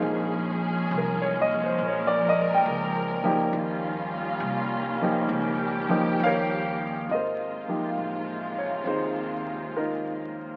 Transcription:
Already playing: F3 A#3 C#4 D#4 G#4
0.02 A#1 F3 G#3 A#3 G#4
0.91 C2
0.98 A#4
1.22 C#5
1.41 D#5
1.64 C5
1.77 A#1 A#4
1.87 C#5
2.07 D5
2.29 D#5
2.54 G5
2.66 C#2
3.24 F3 A#3 D#4 G4
3.53 D#2 D#3 G3 A#3 C#4 F4
4.40 C2
5.02 F3 A#3 D#4 G4
5.29 C#2 G4
5.89 F3 A#3 D#4 G4
6.20 D#2 F5
6.25 A#4 C#5
7.09 G#1 C3 D#3 G#3 A#3 F4 D#5
7.14 A#4 C5
7.68 F3 A#3 D#4 G4
7.97 A1
8.58 C#5
8.83 D#2 C4 F4 G#4 C5
8.88 D#4 F4
9.76 D#4 F4 A#4

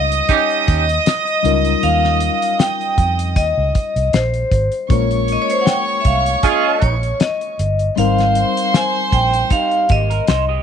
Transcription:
Already playing: C#2 G3 C#4 D#4 F4 A#4 D#5 D#6
0.12 closed hi-hat
0.29 C#4 D#4 G4, kick, closed hi-hat
0.50 closed hi-hat
0.68 D#2, kick, closed hi-hat
0.89 closed hi-hat
1.06 D#5, snare, closed hi-hat
1.27 closed hi-hat
1.43 C#2 G3 C#4 D#4 F4 A#4, closed hi-hat
1.65 closed hi-hat
1.83 D#2 F5, closed hi-hat
2.04 snare
2.20 closed hi-hat
2.42 closed hi-hat
2.59 G5, snare, closed hi-hat
2.81 closed hi-hat
2.98 F2, kick, closed hi-hat
3.19 closed hi-hat
3.36 D#2 D#5, kick, closed hi-hat
3.57 C#2
3.75 kick, closed hi-hat
3.96 C2, closed hi-hat
4.13 A#1 C5, snare, closed hi-hat
4.34 closed hi-hat
4.52 G#1, kick, closed hi-hat
4.72 closed hi-hat
4.89 A#1 G#3 A#3 C#4 F4 A#4 C#5 C#6, kick, closed hi-hat
5.11 closed hi-hat
5.28 closed hi-hat
5.32 D#5
5.42 C#5
5.50 C5, closed hi-hat
5.59 C#5 F#5
5.66 G5, snare, closed hi-hat
6.01 E5
6.05 C2 F5, kick, closed hi-hat
6.26 closed hi-hat
6.43 C#4 F4 G#4 D#5, kick, closed hi-hat
6.82 A#1 C#5, kick, closed hi-hat
7.03 closed hi-hat
7.20 D#5, snare, closed hi-hat
7.41 closed hi-hat
7.59 G1, closed hi-hat
7.79 closed hi-hat
7.96 G#1 G3 C4 D#4 A#4 C5 F5 C6, closed hi-hat
8.18 snare, closed hi-hat
8.35 closed hi-hat
8.57 closed hi-hat
8.74 G#5, snare, closed hi-hat
9.12 A#1 G5, kick, closed hi-hat
9.34 closed hi-hat
9.50 G3 D#4 F5, kick, closed hi-hat
9.71 closed hi-hat
9.89 G#1 A#3 G4 D#5, kick, closed hi-hat
10.10 A#4, closed hi-hat
10.27 C2 D#4 C5, snare, closed hi-hat
10.49 G4 D#5

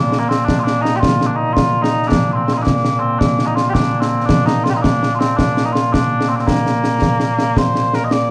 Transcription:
Already playing: A#2 A#3 D4
0.12 snare
0.19 A#3
0.28 C4, snare
0.45 D4, concert bass drum, snare
0.59 F4
0.63 D4, snare
0.81 D#4, snare
0.96 F4 G4
1.03 concert bass drum, snare
1.21 snare
1.26 D4
1.35 D#4
1.53 F4, concert bass drum, snare
1.82 D#4, snare
1.89 D#4
2.03 snare
2.07 D4
2.12 concert bass drum, snare
2.32 C4 F4
2.44 C4
2.48 snare
2.53 F4
2.57 D#4
2.62 D4
2.67 concert bass drum, snare
2.85 snare
3.00 C4
3.19 D4, concert bass drum, snare
3.39 snare
3.46 D#4
3.55 F4, snare
3.69 D4 G4
3.75 concert bass drum, snare
4.01 C4, snare
4.08 C4
4.20 snare
4.26 D4, concert bass drum, snare
4.46 D#4, snare
4.64 F4, snare
4.70 F4 G4
4.77 D#4
4.82 D4, concert bass drum, snare
5.03 snare
5.15 F4
5.19 C4, snare
5.37 D4, concert bass drum, snare
5.57 snare
5.65 D#4
5.72 F4, snare
5.92 D4, concert bass drum, snare
6.21 snare
6.29 C4
6.36 D4, snare
6.40 C4
6.46 A#3, concert bass drum, snare
6.67 snare
6.84 snare
7.02 concert bass drum, snare
7.20 snare
7.39 snare
7.57 C5, concert bass drum, snare
7.75 snare
7.93 A#4, snare
8.04 D#5
8.11 D5, snare

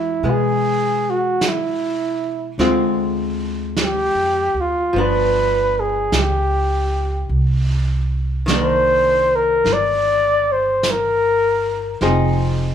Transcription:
Already playing: E2 E3 G#3 B3 E4
0.23 B2 G#3 B3, brush sweep
0.31 G#4
1.10 F#4
1.41 brush sweep, snare, hi-hat pedal
1.48 E4
2.58 D2 D3 G#3 C4 F4, brush sweep, snare
3.77 brush sweep, snare, hi-hat pedal
3.84 G4
4.15 F2
4.54 D2
4.61 F4
4.93 G1 F3 B3, brush sweep
4.98 D4 B4
5.80 G#4
6.12 C#2, brush sweep, snare, hi-hat pedal
6.19 G4
7.29 C2, brush sweep
8.46 D#3 A#3, brush sweep, snare, hi-hat pedal
8.51 D4
8.56 C5
9.36 A#4
9.64 G1, brush sweep, snare
9.73 D5
10.52 C5
10.83 brush sweep, snare, hi-hat pedal
10.91 A#4
12.01 F1 F3 C4 D#4 G#4, brush sweep, snare

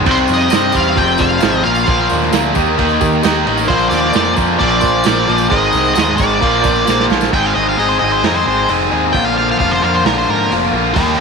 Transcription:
0.06 C2 C3 G3 C4 D#4 G4 C5, kick, crash, tambourine
0.11 C5
0.17 tambourine
0.28 F2 D#4 G4 C5, tambourine, crash
0.34 D#5
0.50 G2 C3 G3 C4 D#4 G4 C5, snare, tambourine, crash
0.61 tambourine
0.72 E2 C3 G3 C4 D#4 G4 C5, kick, tambourine, crash
0.77 F5
0.84 tambourine
0.95 F1 F2 C3 F3 F4 G#4 C5 G5, kick, tambourine, crash
1.07 tambourine
1.18 F1 F4 G#4 D5 F5, kick, tambourine, crash
1.41 G#1 F2 C3 F3 F4 G#4 C5, snare, tambourine, crash
1.52 tambourine
1.64 A#1 A#2 F3 A#3 F4 A#4 D5 F5, tambourine, crash
1.75 tambourine
1.87 A#1 A#2 F3 A#3, kick, tambourine, crash
1.98 tambourine
2.09 D#2 F4 A#4 D5, snare, tambourine, crash
2.22 snare, tambourine
2.31 D2 A#2 F3 A#3 F4 A#4 D5, snare, tambourine, crash
2.44 tambourine
2.54 D#2 D#3 A#3 D#4 G4 A#4 D#5, kick, tambourine, crash
2.78 D#2 D#3 A#3 D#4, kick, tambourine, crash
2.88 tambourine
3.01 D#2 G4 A#4 D#5, kick, tambourine, crash
3.23 D#2 D#3 A#3 D#4 G4 A#4 D#5, snare, tambourine, crash
3.35 tambourine
3.45 A1 D#3 A#3 D#4 G4 A#4 D#5, crash
3.57 tambourine
3.67 A#1 A#2 F3 A#3 F4 A#4 C5 D5, kick, crash
3.79 tambourine
3.89 D#2 F4 A#4 D5 F5, snare, tambourine, crash
4.02 snare, tambourine
4.12 F2 A#2 F3 A#3 F4 A#4 D5, snare, tambourine, crash
4.34 F2 A#2 F3 A#3 F4 A#4 D5, kick, tambourine, crash
4.58 A#1 A#2 F3 A#3 F4 A#4 D5, kick, tambourine, crash
4.70 tambourine
4.81 A#1 F4 A#4 D5, kick, tambourine, crash
5.03 A#1 A#2 F3 A#3 F4 A#4 F5, snare, tambourine, crash
5.26 A#1 A#2 F3 A#3 F4 A#4 D5, tambourine, crash
5.38 tambourine
5.50 G#1 G#2 D#3 G#3 G#4 A#4 C5 D#5, kick, crash
5.62 tambourine
5.73 C2 G#4 A#4 C5, snare, tambourine, crash
5.85 tambourine
5.95 D#2 G#2 D#3 G#3 G#4 A#4 C5 D#5, snare, tambourine, crash
6.17 G#1 G#2 D#3 G#3 G#4 A#4 D5, kick, tambourine, crash
6.29 tambourine
6.41 A#1 A#2 F3 A#3 F4 A#4 D5, kick, tambourine, crash
6.61 A#1 F4 A#4 D5, kick, tambourine, crash
6.75 tambourine
6.85 A#1 A#2 F3 A#3 F4 A#4 C5, snare, tambourine
7.00 snare
7.08 A#1 A#2 F3 A#3 F4 A#4 D5, snare, tambourine
7.21 snare, tambourine
7.33 G#1 G#2 D#3 G#3 C4 D#4 G#4 G5, kick, crash
7.46 F5
7.54 G#1 G#3 C4 D#4 G#4 D#5
7.69 F5
7.76 G#1 G#3 C4 D#4 G#4 D#5, open hi-hat
7.89 C5
7.99 G#1 G#2 D#3 G#3 C4 D#4 G#4 D#5
8.12 C5
8.23 F2 G#2 D#3 G#3 C4 D#4 G#4 A#4, snare, open hi-hat
8.35 C5
8.46 G#1 G#3 C4 D#4 G#4 C5
8.68 F1 G#2 D#3 G#3 C4 D#4 G#4, open hi-hat
8.91 D#2 G#3 C4 D#4 G#4
9.13 A#1 A#2 D3 F3 A#3 F4 G5, kick, open hi-hat
9.25 F5
9.37 F3 A#3 F4 F5
9.51 F5
9.59 F1 D3 F3 A#3 F4 F5, kick, open hi-hat
9.71 C5
9.82 F2 A#2 D3 F3 A#3 F4 F5
9.95 C5
10.04 A#1 A#2 D3 F3 A#3 F4 A#4, snare, open hi-hat
10.18 C5
10.29 G#2 F3 A#3 F4 A#4
10.51 F1 A#2 D3 F3 A#3 F4, open hi-hat
10.72 A#1 A#3 F4
10.77 F3
10.94 D#2 D#3 G3 G4 D#5, kick, open hi-hat
10.99 A#3 D#4

